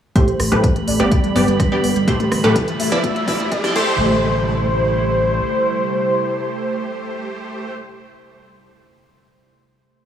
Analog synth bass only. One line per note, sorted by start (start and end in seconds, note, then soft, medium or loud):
0.40 0.49 A1 medium
0.52 0.61 A1 medium
0.88 0.97 A1 medium
1.00 1.09 G1 medium
1.36 1.45 G1 loud
1.48 1.57 G1 medium
1.84 1.93 G1 loud
1.96 2.05 G1 medium
2.32 2.41 A1 medium
2.44 2.53 A1 medium
2.80 2.89 A1 medium
2.92 3.01 G1 medium
3.28 3.37 D2 loud
3.40 3.49 D2 medium
3.76 5.40 A1 loud